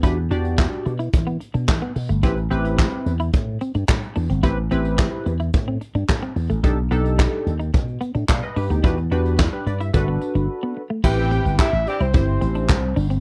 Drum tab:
CC |----------------|----------------|----------------|----------------|
HH |x-xx-xxxxxxx--ox|xxxx-xxxx-xx-xox|x-xx--xxx-xx-xox|x-xx--xxxxxx-xox|
CP |----x-------x---|----x-------x---|----x-------x---|----x-------x---|
SD |----o-------o---|----o-------o---|----o-------o---|----o-------o---|
BD |o---o---o---o---|o---o---o---o---|o---o---o---o---|o---o---o---o---|

CC |----------------|x---------------|
HH |xxxx--xxx-xx----|--xx-xxxxxxx--ox|
CP |----x-----------|----x-------x---|
SD |----o-----------|----o-------o---|
BD |o---o---o-------|o---o---o---o---|